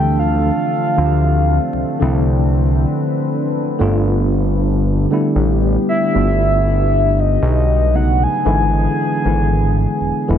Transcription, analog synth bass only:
0.00 0.51 D2 loud
0.98 1.59 D2 loud
1.73 1.84 C2 soft
2.01 2.86 C2 medium
3.80 5.07 G1 loud
5.36 5.78 A1 loud
6.15 7.38 G1 medium
7.42 8.27 B1 loud
8.46 8.88 G#1 loud
9.25 9.87 G#1 medium
10.01 10.12 E1 soft
10.29 10.38 E1 medium

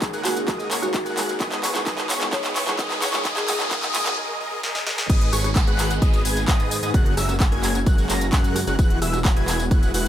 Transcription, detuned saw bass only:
0.71 1.03 F#1 loud
1.06 1.38 F#2 loud
1.63 1.84 E1 medium
2.33 2.53 E1 loud
3.02 3.23 E2 loud
5.10 5.30 G#1 loud
5.33 5.65 G#1 medium
5.67 6.00 G#1 loud
6.02 6.23 G#1 loud
6.25 6.46 G#1 loud
6.48 6.80 G#2 loud
6.83 6.92 G#2 loud
6.94 7.15 F#1 loud
7.17 7.50 F#1 medium
7.52 7.84 F#1 loud
7.87 8.07 F#1 loud
8.10 8.30 F#1 medium
8.33 8.65 F#2 medium
8.67 8.77 F#1 medium
8.79 9.00 E1 loud
9.02 9.34 E1 loud
9.37 9.69 E1 loud
9.71 9.92 E1 loud
9.94 10.08 E1 medium

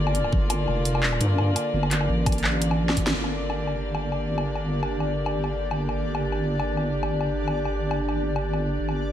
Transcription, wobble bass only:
0.00 0.31 G1 loud
0.33 0.67 G1 medium
0.68 1.19 F1 loud
1.21 1.55 G2 loud
1.73 2.08 G1 medium
2.09 3.13 A1 loud
3.14 8.78 G1 medium
8.79 9.12 G1 medium

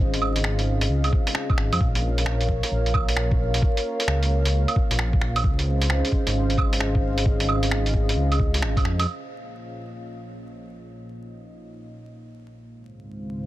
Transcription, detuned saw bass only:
0.00 0.88 G#1 loud
0.89 1.11 C#2 medium
1.57 1.71 G#1 medium
1.72 1.80 F2 medium
1.80 2.61 A#1 loud
2.71 3.61 A#1 medium
4.07 4.66 C#2 loud
4.90 5.45 A#1 loud
5.44 6.02 C#2 medium
6.27 8.16 G#1 loud
8.16 8.63 C#2 medium
8.62 8.84 G#1 medium
8.84 9.06 F2 loud

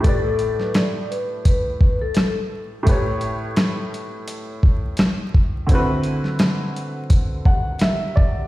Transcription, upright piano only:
0.00 2.81 A2 medium
0.00 2.82 A3 medium
0.00 2.83 G4 medium
0.06 2.84 B4 medium
0.06 2.85 D5 medium
2.83 5.63 A2 medium
2.83 5.64 A3 medium
2.83 5.65 G4 medium
2.89 5.66 B4 medium
2.89 5.67 C#5 medium
5.67 8.46 D3 medium
5.67 8.47 A3 medium
5.67 8.47 C4 medium
5.72 8.47 E4 medium
5.72 8.47 F#4 medium
5.72 8.47 B4 medium
7.46 7.79 F#5 medium
7.82 8.14 E5 medium
8.16 8.47 D5 medium

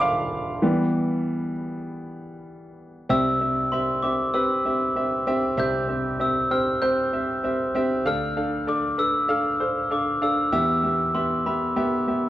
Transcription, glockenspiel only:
3.10 3.74 E6 medium
3.72 4.04 C6 medium
4.03 4.35 D6 medium
4.34 5.23 E6 medium
5.59 6.22 G6 medium
6.21 6.49 E6 medium
6.51 6.83 F6 medium
6.82 7.70 G6 medium
8.07 8.64 F6 loud
8.69 9.00 D6 medium
8.99 9.30 E6 medium
9.31 9.93 F6 medium
9.92 10.23 D6 medium
10.23 10.52 E6 medium
10.54 11.17 E6 medium
11.15 11.43 C6 medium
11.46 12.29 B5 medium

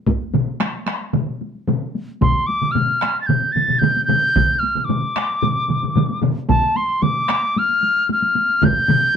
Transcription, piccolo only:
2.22 2.48 C6 medium
2.47 2.73 D6 medium
2.71 3.20 F6 medium
3.21 3.28 A6 medium
3.26 3.53 G6 medium
3.52 3.80 A6 medium
3.79 4.04 G6 medium
4.05 4.60 G6 loud
4.59 4.80 F6 medium
4.80 4.86 F6 medium
4.84 6.20 D6 medium
6.49 6.78 A5 medium
6.76 7.04 C6 medium
7.02 7.60 D6 medium
7.58 8.10 F6 medium
8.12 8.66 F6 medium
8.64 9.16 G6 loud

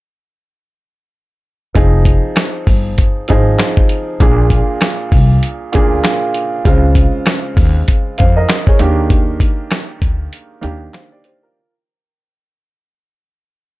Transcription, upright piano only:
1.74 2.75 F3 medium
1.74 2.76 C4 medium
1.74 2.76 D#4 medium
1.74 2.76 G#4 medium
3.28 4.05 F3 medium
3.28 4.05 C4 medium
3.28 4.06 D#4 medium
3.28 4.06 G#4 medium
4.20 5.20 A#2 medium
4.20 5.21 A#3 medium
4.20 5.21 D4 medium
4.20 5.21 G#4 medium
5.72 6.50 A#2 medium
5.72 6.50 A#3 medium
5.72 6.50 D4 medium
5.72 6.51 G#4 medium
6.65 7.65 C#3 medium
6.65 7.65 G#3 medium
6.65 7.66 C4 medium
6.65 7.66 F4 loud
8.18 8.36 C5 medium
8.18 8.36 F5 medium
8.36 8.66 A#4 medium
8.36 8.66 D#5 medium
8.68 8.97 G#4 medium
8.68 8.97 C#5 medium
8.79 9.80 D#3 medium
8.79 9.80 A#3 medium
8.79 9.80 D4 medium
8.79 9.81 G4 loud
10.61 11.39 D#3 medium
10.61 11.39 A#3 medium
10.61 11.40 D4 medium
10.61 10.94 G4 loud
10.93 11.11 C5 medium
10.93 11.11 F5 medium
11.12 11.24 G4 medium
11.12 11.24 D5 medium
11.25 11.42 G4 medium
11.25 11.42 C5 medium
11.43 11.72 F4 medium
11.43 11.72 A#4 medium

